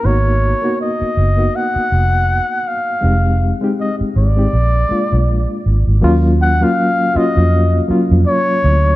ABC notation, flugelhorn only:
X:1
M:4/4
L:1/16
Q:"Swing 16ths" 1/4=80
K:Ebm
V:1 name="Flugelhorn"
d4 e4 g6 f2- | f3 z e2 =d8 z2 | z2 g f3 e4 z2 d4 |]